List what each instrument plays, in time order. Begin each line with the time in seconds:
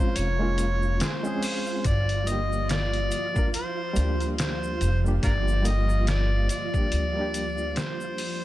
Already playing: string machine F3 F4, reed electric piano G#3 C4, synth texture F4 F5, harmonica C5
0.00 reed electric piano C#4 F4
0.16 upright bass F1, harmonica C#5, closed hi-hat, shaker
0.39 reed electric piano G#3 A#3 C#4 F4
0.58 closed hi-hat, shaker
0.82 shaker
1.00 harmonica F4 G#4 C5, snare, closed hi-hat, shaker
1.23 reed electric piano G#3 C4 C#4, shaker
1.27 reed electric piano G#4
1.43 open hi-hat, shaker
1.66 shaker
1.84 upright bass G1, string machine F3 F4, harmonica D5, kick, closed hi-hat, shaker
2.09 closed hi-hat
2.24 reed electric piano G3 A#3, closed hi-hat, shaker
2.29 reed electric piano D3 G4, harmonica D#5
2.53 shaker
2.69 harmonica D5, snare, closed hi-hat, shaker
2.93 closed hi-hat
3.11 closed hi-hat, shaker
3.35 reed electric piano G3 A#3 D4, kick, shaker
3.39 reed electric piano A#4
3.54 harmonica C5, closed hi-hat, shaker
3.93 upright bass D2, reed electric piano G3 A#3, closed hi-hat, shaker
3.99 reed electric piano D4 G4
4.20 closed hi-hat, shaker
4.38 harmonica C5, snare, closed hi-hat, shaker
4.63 shaker
4.81 upright bass F1, closed hi-hat, shaker
5.04 reed electric piano G3 A#3 D4 G4, shaker
5.23 upright bass G1, harmonica F4 A#4 D5, kick, closed hi-hat, shaker
5.48 shaker
5.62 reed electric piano G3 A#3, closed hi-hat, shaker
5.67 reed electric piano D3 G4, harmonica D#5
5.89 shaker
6.07 harmonica D5, snare, closed hi-hat, shaker
6.49 harmonica D5, closed hi-hat, shaker
6.73 reed electric piano G3 A#3 D4, kick, shaker
6.77 reed electric piano G4
6.92 upright bass D2, closed hi-hat, shaker
7.13 reed electric piano G3 A#3
7.19 reed electric piano D4 G4
7.34 closed hi-hat, shaker
7.58 shaker
7.76 harmonica C5, snare, closed hi-hat, shaker
8.01 shaker
8.18 open hi-hat, shaker